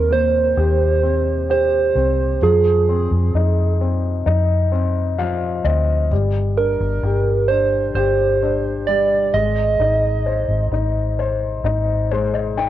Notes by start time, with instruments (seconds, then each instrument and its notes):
Already playing: fingered electric bass D#2, grand piano D#3 A#3 C4, soft synth lead A#4
0.11 grand piano A#3, soft synth lead C5
0.57 fingered electric bass D#2, grand piano G4
1.03 grand piano C4
1.50 grand piano G4, soft synth lead C5
1.95 fingered electric bass C2, grand piano C4
2.42 fingered electric bass F2, grand piano F3, soft synth lead G#4
2.89 grand piano C4
3.11 fingered electric bass F2
3.34 fingered electric bass F2, grand piano D#4
3.81 grand piano C4
4.26 fingered electric bass F2, grand piano D#4
4.72 grand piano C4
5.18 grand piano F3 F5
5.64 fingered electric bass D2, grand piano C4 D#5
6.10 fingered electric bass G1, grand piano G3
6.57 grand piano D4, soft synth lead A#4
6.80 fingered electric bass G1
7.03 fingered electric bass G1, grand piano G4
7.48 grand piano D4, soft synth lead C5
7.94 fingered electric bass G1, grand piano G4, soft synth lead C5
8.43 grand piano D4
8.87 grand piano G3, soft synth lead D5
9.34 fingered electric bass G#1, grand piano G#3, soft synth lead D#5
9.79 fingered electric bass G#1, grand piano D#4
10.26 grand piano C5
10.48 fingered electric bass G#1
10.71 fingered electric bass G#1, grand piano D#4
11.19 grand piano C5
11.64 fingered electric bass G#1, grand piano D#4
12.11 grand piano G#3 C5
12.34 grand piano D#5
12.57 grand piano D#4 G5